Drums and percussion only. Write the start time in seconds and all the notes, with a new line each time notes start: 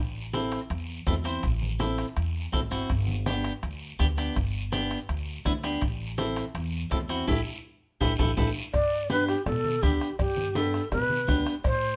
0.34 bombo rim, high conga, high timbale, short guiro
0.52 bombo rim, high timbale, short guiro
0.70 bombo rim, high conga, high timbale, long guiro
1.07 bombo low, bombo rim, high conga, high timbale, low timbale, short guiro
1.25 bombo rim, high timbale, short guiro
1.43 bombo low, bombo rim, high conga, high timbale, long guiro
1.62 high conga
1.80 bombo rim, high conga, high timbale, short guiro
1.98 bombo rim, high timbale, short guiro
2.17 bombo rim, high conga, high timbale, long guiro
2.53 bombo low, bombo rim, high conga, high timbale, low timbale, short guiro
2.71 bombo rim, high timbale, short guiro
2.90 bombo low, bombo rim, high conga, high timbale, long guiro
3.08 high conga
3.26 bombo rim, high conga, high timbale, short guiro
3.44 bombo rim, high timbale, short guiro
3.63 bombo rim, high conga, high timbale, long guiro
3.99 bombo low, bombo rim, high conga, high timbale, short guiro
4.18 bombo rim, high timbale, short guiro
4.36 bombo low, bombo rim, high conga, high timbale, long guiro
4.73 bombo rim, high conga, high timbale, short guiro
4.91 bombo rim, high timbale, short guiro
5.09 bombo rim, high conga, high timbale, long guiro
5.45 bombo low, bombo rim, high conga, high timbale, low timbale, short guiro
5.63 bombo rim, high timbale, short guiro
5.81 bombo low, bombo rim, high conga, high timbale, long guiro
6.18 bombo rim, high conga, high timbale, short guiro
6.36 bombo rim, high timbale, short guiro
6.55 bombo rim, high conga, high timbale, long guiro
6.91 bombo low, bombo rim, high conga, high timbale, low timbale, short guiro
7.09 bombo rim, high timbale, short guiro
7.28 bombo low, low conga, high timbale, long guiro
8.01 bombo low, low conga, high timbale, long guiro
8.19 bombo low, low conga, high timbale, long guiro
8.37 bombo low, low conga, high timbale, long guiro
8.74 bombo low, bombo rim, cowbell, high conga, long guiro
9.10 bombo rim, high conga, short guiro
9.28 bombo rim, short guiro
9.46 bombo rim, cowbell, high conga, low conga, long guiro
9.65 high conga
9.83 bombo low, bombo rim, high conga, short guiro
10.01 bombo rim, short guiro
10.19 bombo low, bombo rim, cowbell, high conga, long guiro
10.37 high conga
10.55 bombo rim, high conga, short guiro
10.74 bombo rim, short guiro
10.92 bombo rim, cowbell, high conga, low conga, long guiro
11.10 high conga
11.28 bombo low, bombo rim, high conga, low timbale, short guiro
11.47 bombo rim, short guiro
11.64 bombo low, bombo rim, cowbell, high conga, long guiro